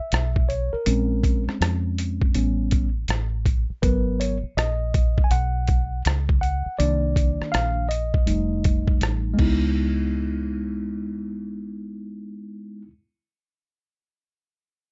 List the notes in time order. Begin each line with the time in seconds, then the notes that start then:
Already playing: E5
0.12 B1, cross-stick, closed hi-hat
0.36 kick
0.49 C#5, closed hi-hat
0.73 A#4, muted fingered electric bass stroke
0.86 A#1 G#3 C4 C#4, closed hi-hat
1.24 kick, closed hi-hat
1.47 muted fingered electric bass stroke, cross-stick
1.61 F2, cross-stick, closed hi-hat
1.98 closed hi-hat
2.22 kick
2.34 A1 G3 B3 C#4, closed hi-hat
2.71 kick, closed hi-hat
3.08 A1, cross-stick, closed hi-hat
3.46 kick, closed hi-hat
3.70 muted fingered electric bass stroke
3.82 G#1 F#3 B3 A#4 B4, kick, closed hi-hat
4.20 C#5, closed hi-hat
4.43 muted fingered electric bass stroke
4.57 A#1 D#5, cross-stick, closed hi-hat
4.94 kick, closed hi-hat
5.18 kick
5.24 G#5
5.31 B1 F#5, closed hi-hat
5.67 kick, closed hi-hat
6.05 C#2, cross-stick, closed hi-hat
6.29 kick
6.41 F#5, closed hi-hat
6.66 muted fingered electric bass stroke
6.79 C2 D#3 A#3 D4 D5, closed hi-hat
7.16 kick, closed hi-hat
7.41 muted fingered electric bass stroke, cross-stick
7.52 A#1 F5, cross-stick, closed hi-hat
7.89 D#5, closed hi-hat
8.14 kick
8.26 F1 G3 A3 D#4, closed hi-hat
8.64 kick, closed hi-hat
8.88 kick
9.01 A1, cross-stick, closed hi-hat
9.34 G#3 B3
9.39 C#2 D#4 E4, kick, crash